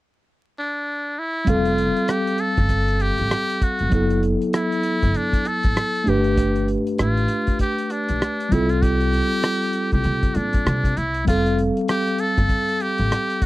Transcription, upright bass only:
1.48 F1
2.58 G1
3.20 A1
3.81 F1
3.92 F#1
5.03 G1
5.65 A1
6.07 G1
6.99 A1
8.10 B1
8.52 C2
9.93 C2
10.05 C3
10.36 A#2
10.66 C3
10.97 C2
11.28 F1
12.38 G1
12.99 A1

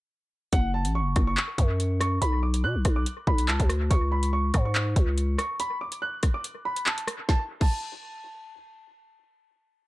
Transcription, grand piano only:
0.53 F#5
0.74 A5
0.95 C#6
1.27 C#6
2.01 C#6
2.22 B5
2.43 D6
2.64 F#6
2.96 D6
3.27 B5
3.48 A5
3.90 C#6
4.12 B5
4.33 C#6
4.65 C#6
5.39 C#6
5.60 B5
5.81 D6
6.02 F#6
6.34 D6
6.65 B5
6.86 A5
7.29 A5
7.61 A5

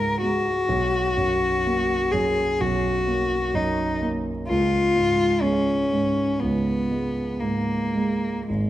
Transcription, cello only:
Already playing: A#4
0.22 F#4
2.12 G#4
2.61 F#4
3.55 D#4
4.48 F4
5.42 C#4
6.39 B3
7.40 A#3
8.48 G#3

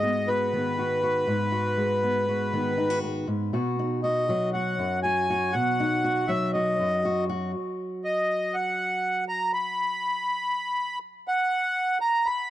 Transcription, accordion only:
Already playing: D#5
0.28 B4
4.03 D#5
4.53 F#5
5.03 G#5
5.52 F#5
6.28 E5
6.53 D#5
8.04 D#5
8.54 F#5
9.29 A#5
9.53 B5
11.28 F#5
12.01 A#5
12.26 B5

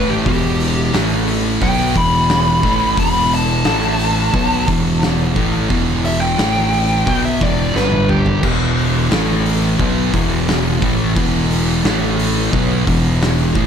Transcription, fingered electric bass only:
Already playing: A1
0.26 E1
0.94 A1
1.62 B1
1.96 E1
2.63 A1
2.98 E1
3.66 A1
4.34 B1
4.69 E1
5.36 A1
5.71 E1
6.39 A1
7.07 B1
7.42 E1
7.75 G1
8.43 E1
9.11 A1
9.80 B1
10.14 E1
10.83 A1
11.17 E1
11.85 A1
12.53 B1
12.88 E1
13.56 A1

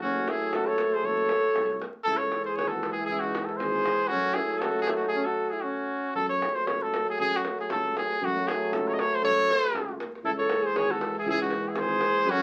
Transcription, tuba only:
0.00 F#1
0.52 C#2
1.03 F#1
1.55 C2
2.06 C#2
2.58 G#1
3.10 C#2
3.60 G#1
4.11 F#2
4.62 C#2
6.16 F#2
6.67 C#2
7.19 F#2
7.70 C#2
8.21 F#2
8.71 C#2
9.22 F#2
9.73 C#2
10.23 C#2
10.74 G#1
11.25 C#2
11.76 G#1
12.25 F#2

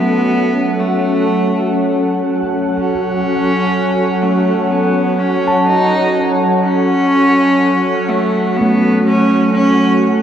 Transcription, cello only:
Already playing: B3
0.79 A3
2.78 C#4
4.22 A3
4.71 B3
5.19 C#4
5.66 D#4
6.63 C#4
8.08 A3
8.57 B3
9.06 C#4
9.53 C#4

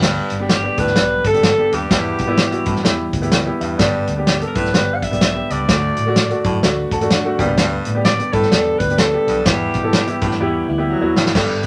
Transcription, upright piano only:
Already playing: B3 D4 G4
0.40 B3 D4 G4
0.63 B3 D4 G4
0.96 B3 D4 G4
1.33 B3 D4 G4
1.58 B3 D4 G4
1.90 B3 E4 G4
2.27 B3 E4 G4
2.51 B3 E4 F#4
2.84 B3 E4 G4
3.22 B3 E4 G4
3.32 G5
3.45 B3 E4 G4
3.61 E5
3.78 B3 D4 G4
4.17 B3 D4 G4
4.40 B3 D4 A4
4.73 B3 D4 G4
5.11 B3 D4 G4
5.34 B3 D4 G4
5.68 A3 D4 F#4
6.06 A3 D4 F#4
6.30 A3 D4 F#4
6.63 A3 D4 F#4
6.92 A5
7.01 A3 D4 F#4
7.11 F#5
7.25 A3 D4 F#4
7.38 A#3 D4 G4 G5
7.44 B3
7.95 B3 D4 G4
8.19 B3 D4 G4
8.51 B3 D4 G4
8.89 B3 D4 G4
9.13 B3 D4 G4
9.45 B3 E4 G4
9.83 B3 E4 A4
10.07 B3 E4 G4
10.40 B3 E4 G4
10.78 B3 E4 G4
11.01 B3 E4 F#4
11.34 D3 G3 B3 G4

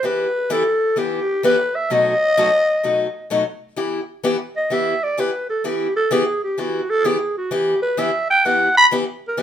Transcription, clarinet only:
0.05 B4
0.52 A4
0.98 G4
1.45 B4
1.75 E5
1.92 D#5
4.57 D#5
4.73 E5
5.04 D5
5.20 B4
5.50 A4
5.65 G4
5.96 A4
6.13 G#4
6.44 G4
6.60 F#4
6.90 A4
7.06 G#4
7.37 F#4
7.53 G4
7.82 B4
7.99 E5
8.30 G5
8.46 F#5
8.78 B5
9.28 A#4
9.39 B4

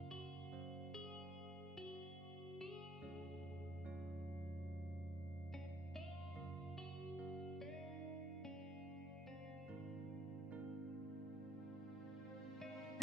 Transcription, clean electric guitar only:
Already playing: F4
0.11 F#4
0.94 G#4
1.78 F#4
2.61 G#4
4.18 F#4
5.54 C#4
5.96 F4
6.78 F#4
7.61 D#4
8.45 C#4
9.27 C4
12.62 D#4

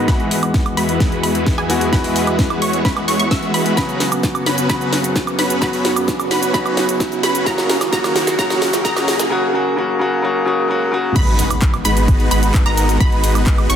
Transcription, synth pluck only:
0.08 B5
0.77 B5
1.23 B5
1.58 G#5
1.93 B5
2.62 C#6
2.85 B5
3.08 C#6
3.19 C#6
3.31 E6
3.54 B5
3.77 B5
4.46 B5
4.70 B5
5.39 B5
5.62 B5
6.31 B5
6.54 B5
7.23 B5
7.46 A#5
7.93 A#5
8.39 A#5
8.85 A#5
11.16 B5
11.85 B5
12.31 B5
12.66 A#5
13.00 B5
13.70 C#6

